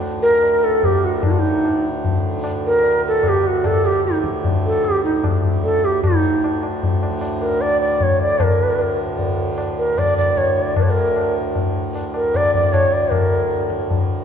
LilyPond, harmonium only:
\new Staff \with { instrumentName = "Harmonium" } { \clef bass \time 3/4 \tempo 4 = 151 <d, a,>2. | <d, a,>2.~ | <d, a,>2.~ | <d, a,>2.~ |
<d, a,>2. | <d, a,>2.~ | <d, a,>2.~ | <d, a,>2.~ |
<d, a,>2. | <d, a,>2.~ | <d, a,>2.~ | <d, a,>2. | }